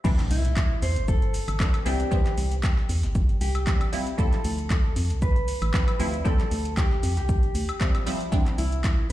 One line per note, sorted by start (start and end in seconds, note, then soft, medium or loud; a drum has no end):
0.04 0.15 C2 loud
0.04 1.57 E3 loud
0.04 1.57 B3 medium
0.04 1.57 C4 loud
0.04 1.58 D4 loud
0.04 kick loud
0.04 crash loud
0.04 impact medium
0.04 shaker soft
0.04 shaker medium
0.19 clap soft
0.19 closed hi-hat medium
0.31 0.77 C2 loud
0.31 0.84 E4 loud
0.31 open hi-hat loud
0.31 shaker medium
0.45 closed hi-hat medium
0.45 shaker soft
0.57 kick loud
0.57 snare loud
0.57 clap loud
0.57 shaker soft
0.57 shaker medium
0.82 0.98 E2 loud
0.82 1.08 C5 loud
0.82 open hi-hat loud
0.82 shaker medium
0.96 1.42 G1 loud
0.96 closed hi-hat medium
0.96 closed hi-hat soft
0.96 shaker soft
1.08 1.86 A4 loud
1.08 kick loud
1.08 shaker soft
1.08 shaker medium
1.22 closed hi-hat soft
1.34 open hi-hat loud
1.34 shaker medium
1.48 1.57 G1 loud
1.48 closed hi-hat medium
1.48 closed hi-hat soft
1.48 high woodblock medium
1.48 shaker soft
1.60 1.83 E3 medium
1.60 1.83 B3 medium
1.60 1.83 C4 medium
1.60 1.83 D4 medium
1.60 kick loud
1.60 snare loud
1.60 clap loud
1.60 shaker soft
1.60 shaker medium
1.74 closed hi-hat medium
1.74 closed hi-hat soft
1.74 high woodblock medium
1.85 2.05 C2 medium
1.85 2.09 E3 medium
1.85 2.09 B3 medium
1.85 2.09 C4 medium
1.85 2.09 D4 loud
1.85 3.40 G4 loud
1.85 open hi-hat loud
1.85 shaker medium
2.00 closed hi-hat medium
2.00 shaker soft
2.11 2.22 C2 loud
2.11 3.64 E3 loud
2.11 3.64 B3 loud
2.11 3.64 C4 medium
2.11 3.65 D4 loud
2.11 kick loud
2.11 shaker soft
2.11 shaker medium
2.26 snare soft
2.26 clap soft
2.26 closed hi-hat medium
2.38 2.84 C2 loud
2.38 open hi-hat loud
2.38 shaker medium
2.51 closed hi-hat medium
2.51 closed hi-hat soft
2.51 shaker soft
2.63 kick loud
2.63 snare loud
2.63 clap loud
2.63 shaker soft
2.63 shaker medium
2.77 snare medium
2.89 3.05 E2 loud
2.89 open hi-hat loud
2.89 shaker medium
3.03 3.36 G1 loud
3.03 snare medium
3.03 closed hi-hat medium
3.03 shaker soft
3.15 kick loud
3.15 shaker medium
3.15 shaker soft
3.29 closed hi-hat soft
3.41 3.88 C2 loud
3.41 3.89 G4 medium
3.41 open hi-hat loud
3.41 shaker medium
3.55 closed hi-hat medium
3.55 high woodblock medium
3.55 shaker soft
3.66 3.90 E3 medium
3.66 3.90 B3 medium
3.66 3.90 C4 medium
3.66 3.90 D4 medium
3.66 kick loud
3.66 snare loud
3.66 clap loud
3.66 shaker medium
3.66 shaker soft
3.81 closed hi-hat medium
3.81 high woodblock medium
3.92 4.16 F3 medium
3.92 4.16 G3 medium
3.92 4.16 C4 medium
3.92 4.16 E4 loud
3.92 open hi-hat loud
3.92 open hi-hat medium
3.92 shaker medium
4.07 closed hi-hat medium
4.07 shaker soft
4.18 4.29 D2 loud
4.18 5.70 F3 loud
4.18 5.71 G3 medium
4.18 5.71 C4 medium
4.18 5.71 E4 loud
4.18 5.22 A4 loud
4.18 kick loud
4.18 shaker soft
4.18 shaker medium
4.33 clap soft
4.33 closed hi-hat medium
4.44 4.91 D2 loud
4.44 open hi-hat loud
4.44 shaker medium
4.58 closed hi-hat medium
4.58 shaker soft
4.70 kick loud
4.70 snare loud
4.70 clap loud
4.70 shaker soft
4.70 shaker medium
4.96 5.12 F2 loud
4.96 open hi-hat loud
4.96 shaker medium
5.10 5.56 C2 loud
5.10 closed hi-hat medium
5.10 closed hi-hat soft
5.10 shaker soft
5.22 6.25 B4 loud
5.22 kick loud
5.22 shaker soft
5.22 shaker loud
5.36 closed hi-hat soft
5.48 open hi-hat loud
5.48 shaker medium
5.62 5.71 A1 loud
5.62 closed hi-hat medium
5.62 closed hi-hat soft
5.62 high woodblock medium
5.62 shaker soft
5.73 5.97 F3 medium
5.73 5.97 G3 medium
5.73 5.97 C4 medium
5.73 5.97 E4 medium
5.73 kick loud
5.73 snare loud
5.73 clap loud
5.73 shaker soft
5.73 shaker medium
5.88 closed hi-hat soft
5.88 closed hi-hat medium
5.88 high woodblock medium
5.99 6.19 D2 medium
5.99 6.22 F3 medium
5.99 6.23 G3 medium
5.99 6.23 C4 medium
5.99 6.23 E4 loud
5.99 open hi-hat loud
5.99 shaker medium
6.14 closed hi-hat medium
6.14 shaker soft
6.25 6.36 D2 loud
6.25 7.77 F3 loud
6.25 7.78 G3 medium
6.25 7.78 C4 loud
6.25 7.78 E4 loud
6.25 6.77 A4 loud
6.25 kick loud
6.25 shaker medium
6.25 shaker soft
6.39 snare soft
6.39 clap soft
6.39 closed hi-hat medium
6.51 6.98 D2 loud
6.51 open hi-hat loud
6.51 shaker medium
6.65 closed hi-hat medium
6.65 closed hi-hat soft
6.65 shaker soft
6.77 7.16 G4 medium
6.77 kick loud
6.77 snare loud
6.77 clap loud
6.77 shaker medium
6.77 shaker soft
6.91 snare medium
7.03 7.19 F2 loud
7.03 open hi-hat loud
7.03 shaker medium
7.17 7.50 C2 loud
7.17 8.03 G4 medium
7.17 snare medium
7.17 closed hi-hat medium
7.17 shaker soft
7.29 kick loud
7.29 shaker medium
7.29 shaker soft
7.43 closed hi-hat soft
7.55 7.65 D2 medium
7.55 open hi-hat loud
7.55 shaker medium
7.69 closed hi-hat medium
7.69 high woodblock medium
7.69 shaker soft
7.80 8.03 F3 medium
7.80 8.04 G3 medium
7.80 8.04 C4 medium
7.80 8.04 E4 medium
7.80 kick loud
7.80 snare loud
7.80 clap loud
7.80 shaker medium
7.80 shaker soft
7.95 closed hi-hat medium
7.95 high woodblock medium
8.06 8.29 F3 medium
8.06 8.30 G3 medium
8.06 8.30 C4 medium
8.06 8.30 E4 loud
8.06 open hi-hat medium
8.06 open hi-hat loud
8.06 shaker medium
8.21 closed hi-hat medium
8.21 shaker soft
8.31 8.43 C2 loud
8.31 9.12 E3 loud
8.31 9.12 B3 loud
8.31 9.12 C4 loud
8.31 9.12 D4 loud
8.31 kick loud
8.31 shaker medium
8.31 shaker soft
8.46 clap soft
8.46 closed hi-hat medium
8.58 9.05 C2 loud
8.58 9.06 E4 medium
8.58 open hi-hat loud
8.58 shaker medium
8.72 closed hi-hat medium
8.72 shaker soft
8.84 kick loud
8.84 snare loud
8.84 clap loud
8.84 shaker soft
8.84 shaker medium